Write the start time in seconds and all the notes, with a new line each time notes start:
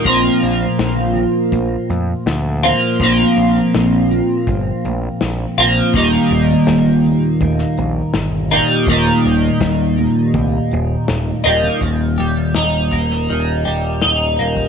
0.04 A#1 A#2 F3 A#3 C4 F4, kick, closed hi-hat
0.24 high conga
0.43 A#1, closed hi-hat
0.61 high conga
0.79 A#1, snare, closed hi-hat
0.97 low conga
1.15 closed hi-hat, low conga
1.52 A#1, kick, closed hi-hat, high conga
1.89 F2, closed hi-hat, high conga
2.26 D2, snare, closed hi-hat
2.63 A#2 F3 A#3 C4 F4, closed hi-hat, low conga
3.00 A#1 A#2 F3 A#3 C4, kick, closed hi-hat
3.05 F4
3.19 high conga
3.36 A#1, closed hi-hat
3.58 high conga
3.74 A#1, snare, closed hi-hat
3.93 low conga
4.11 closed hi-hat, high conga, low conga
4.47 G1, kick, closed hi-hat, high conga
4.85 A#1, closed hi-hat, high conga
5.21 A#1, snare, closed hi-hat
5.58 A#1 A#2 F3 A#3 C4 F4, closed hi-hat, low conga
5.94 D#1 D#2 A#2 D#3 G3 A#3 D#4, kick, closed hi-hat
6.14 high conga
6.30 D#1, closed hi-hat
6.49 high conga
6.67 D#1, snare, closed hi-hat
6.87 low conga
7.04 closed hi-hat, high conga, low conga
7.41 D#1, kick, closed hi-hat, high conga
7.59 snare
7.77 A#1, closed hi-hat, high conga
8.13 G1, snare, closed hi-hat
8.50 D#3 G3 A#3 D#4, closed hi-hat, low conga
8.54 D#2 A#2
8.86 D#1 D#2 A#2 D#3, kick, closed hi-hat
8.90 G3 A#3 D#4
9.07 high conga
9.24 D#1, closed hi-hat
9.44 high conga
9.60 D#1, kick, snare, closed hi-hat
9.97 closed hi-hat, high conga, low conga
10.33 C2, kick, closed hi-hat, high conga
10.71 D#1, closed hi-hat, high conga
11.08 D#1, snare, closed hi-hat
11.28 high conga
11.44 D#1 D#2 A#2 D#3 G3 A#3 D#4, closed hi-hat, low conga
11.63 low conga
11.81 D#1 D#2, kick, closed hi-hat
12.18 D#1 G3, closed hi-hat
12.36 closed hi-hat
12.54 D#1 D#4, snare, closed hi-hat
12.92 D#1 A#3, kick, closed hi-hat
13.11 snare
13.28 D#1 D#3, closed hi-hat
13.65 D#1 G3, closed hi-hat
13.84 closed hi-hat
14.01 D#1 D#4, snare, closed hi-hat
14.39 D#1 A#3, closed hi-hat
14.57 kick